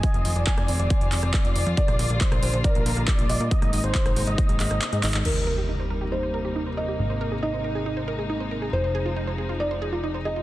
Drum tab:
CC |----------------|----------------|----------------|x---------------|
HH |xxoxxxoxxxoxxxox|xxoxxxoxxxoxxxox|xxoxxxoxxxoxxxox|----------------|
CP |----x-----x-x---|----x-------x---|----x-----x-x-xx|----------------|
SD |-----r-----r----|-r---r----------|-r---r-----r----|----------------|
BD |o---o---o---o---|o---o---o---o---|o---o---o-------|----------------|

CC |----------------|----------------|
HH |----------------|----------------|
CP |----------------|----------------|
SD |----------------|----------------|
BD |----------------|----------------|